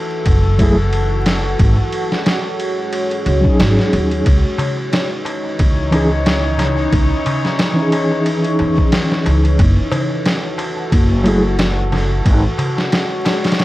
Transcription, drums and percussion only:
0.26 kick, ride
0.59 kick, ride
0.93 ride
1.26 snare, ride
1.59 kick, ride
1.92 ride
2.12 snare
2.26 snare, ride
2.60 ride
2.93 ride
3.11 ride
3.26 ride
3.44 kick
3.60 snare, ride
3.79 snare
3.93 ride
4.11 ride
4.25 kick, ride, darbuka tek
4.58 ride, darbuka tek, darbuka dum
4.77 darbuka tek
4.92 snare, ride, darbuka tek
5.25 ride, darbuka tek
5.44 darbuka tek
5.59 kick, ride, darbuka tek
5.92 ride, darbuka tek
6.11 darbuka tek
6.25 snare, ride, darbuka tek
6.58 snare, ride, darbuka tek, darbuka dum
6.77 darbuka tek
6.92 kick, ride, darbuka tek
7.26 ride, darbuka tek, darbuka dum
7.45 snare, darbuka tek
7.59 snare, ride, darbuka tek
7.92 ride, darbuka tek
8.11 darbuka tek
8.25 ride, darbuka tek
8.44 ride
8.59 ride, darbuka tek
8.78 kick, darbuka tek
8.92 snare, ride, darbuka tek
9.11 snare
9.25 ride, darbuka tek
9.43 ride, darbuka tek
9.58 kick, ride, darbuka tek
9.92 ride, darbuka tek, darbuka dum
10.10 darbuka tek
10.26 snare, ride, darbuka tek
10.58 ride, darbuka tek
10.77 darbuka tek
10.91 kick, ride, darbuka tek
11.24 ride, darbuka tek
11.43 darbuka tek
11.57 snare, ride, darbuka tek
11.92 snare, ride, darbuka tek, darbuka dum
12.10 darbuka tek
12.24 kick, ride, darbuka tek
12.58 ride, darbuka tek, darbuka dum
12.77 snare, darbuka tek
12.92 snare, ride, darbuka tek
13.25 snare, ride, darbuka tek
13.44 snare, ride, darbuka tek
13.52 snare, ride
13.59 snare, ride, darbuka tek

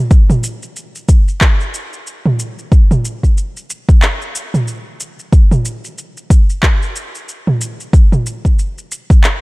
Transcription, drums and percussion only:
0.11 kick, shaker
0.30 mid tom, shaker
0.44 shaker
0.63 shaker
0.76 shaker
0.95 shaker
1.09 kick, shaker
1.28 shaker
1.41 kick, clap, shaker
1.61 shaker
1.74 shaker
1.93 shaker
2.07 shaker
2.26 mid tom
2.39 shaker
2.59 shaker
2.72 kick, shaker
2.91 mid tom, shaker
3.05 shaker
3.23 kick, shaker
3.38 shaker
3.57 shaker
3.70 shaker
3.89 kick, shaker
4.02 clap, shaker
4.22 shaker
4.35 shaker
4.54 mid tom, shaker
4.68 shaker
5.00 shaker
5.19 shaker
5.33 kick, shaker
5.51 mid tom, shaker
5.65 shaker
5.84 shaker
5.98 shaker
6.17 shaker
6.30 kick, shaker
6.50 shaker
6.63 kick, clap, shaker
6.82 shaker
6.96 shaker
7.15 shaker
7.29 shaker
7.47 mid tom
7.61 shaker
7.80 shaker
7.93 kick, shaker
8.12 mid tom, shaker
8.26 shaker
8.45 kick, shaker
8.59 shaker
8.78 shaker
8.92 shaker
9.10 kick, shaker
9.24 clap, shaker

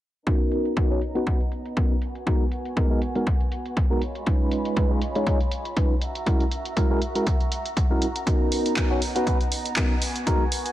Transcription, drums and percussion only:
0.27 kick, closed hi-hat
0.52 closed hi-hat
0.65 closed hi-hat
0.77 kick
1.02 closed hi-hat
1.15 closed hi-hat
1.27 kick
1.41 closed hi-hat
1.52 closed hi-hat
1.66 closed hi-hat
1.77 kick, closed hi-hat
2.02 closed hi-hat
2.15 closed hi-hat
2.27 kick, closed hi-hat
2.52 closed hi-hat
2.65 closed hi-hat
2.77 kick, closed hi-hat
3.02 closed hi-hat
3.15 closed hi-hat
3.27 kick, closed hi-hat
3.40 closed hi-hat
3.52 closed hi-hat
3.66 closed hi-hat
3.77 kick, closed hi-hat
4.02 closed hi-hat
4.15 closed hi-hat
4.26 kick, closed hi-hat
4.51 closed hi-hat
4.65 closed hi-hat
4.76 kick, closed hi-hat
5.02 closed hi-hat
5.15 closed hi-hat
5.27 kick, closed hi-hat
5.40 closed hi-hat
5.51 closed hi-hat
5.65 closed hi-hat
5.77 kick, closed hi-hat
6.02 closed hi-hat
6.15 closed hi-hat
6.26 kick, closed hi-hat
6.40 closed hi-hat
6.51 closed hi-hat
6.65 closed hi-hat
6.77 kick, closed hi-hat
7.02 closed hi-hat
7.15 closed hi-hat
7.27 kick, closed hi-hat
7.41 closed hi-hat
7.52 closed hi-hat
7.66 closed hi-hat
7.77 kick, closed hi-hat
8.02 closed hi-hat
8.16 closed hi-hat
8.27 kick, closed hi-hat
8.52 open hi-hat
8.66 closed hi-hat
8.77 kick, clap, closed hi-hat
9.02 open hi-hat
9.16 closed hi-hat
9.27 kick, closed hi-hat
9.41 closed hi-hat
9.52 open hi-hat
9.65 closed hi-hat
9.76 kick, clap, closed hi-hat
10.02 open hi-hat
10.16 closed hi-hat
10.27 kick, closed hi-hat
10.52 open hi-hat
10.66 closed hi-hat

